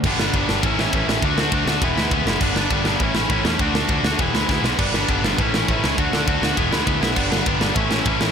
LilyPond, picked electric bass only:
\new Staff \with { instrumentName = "Picked electric bass" } { \clef bass \time 4/4 \key a \major \tempo 4 = 202 g,,8 g,,8 g,,8 g,,8 a,,8 a,,8 a,,8 a,,8 | d,8 d,8 d,8 d,8 e,,8 d,8 d,8 fis,,8 | g,,8 g,,8 g,,8 g,,8 a,,8 a,,8 a,,8 e,8 | d,8 d,8 d,8 d,8 e,,8 d,8 d,8 b,,8 |
g,,8 g,,8 g,,8 g,,8 a,,8 a,,8 a,,8 cis,8 | d,8 d,8 d,8 d,8 e,,8 d,8 d,8 b,,8 | g,,8 g,,8 g,,8 g,,8 a,,8 a,,8 a,,8 a,,8 | }